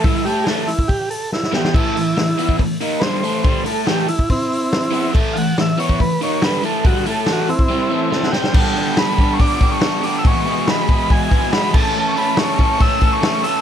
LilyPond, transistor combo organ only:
\new Staff \with { instrumentName = "Transistor combo organ" } { \time 4/4 \key a \mixolydian \tempo 4 = 141 << { r1 | r1 | r1 | r1 |
r2. \tuplet 3/2 { a''8 fis''16 g''8.~ } | g''4 \tuplet 3/2 { b''4~ b''16 cis'''16 } d'''8. cis'''16~ \tuplet 3/2 { cis'''8. d'''8 e'''16 } | cis'''4 b''4 gis''4 b''8 a''8~ | a''16. cis'''32 b''8 cis'''4 e'''8. cis'''8. e'''8 | } \\ { e'8 g'8 <gis' a'>8 e'8 g'8 a'8 e'8 g'8 | e'2 r4 <b' c''>4~ | <b' c''>8 a'8 g'8 e'8 <c' e'>2 | r8 <f'' fis''>8 e''8 cis''8 b'8 cis''8 b'8 a'8 |
fis'8 a'8 fis'8 <c' e'>2 r8 | r1 | r1 | r1 | } >> }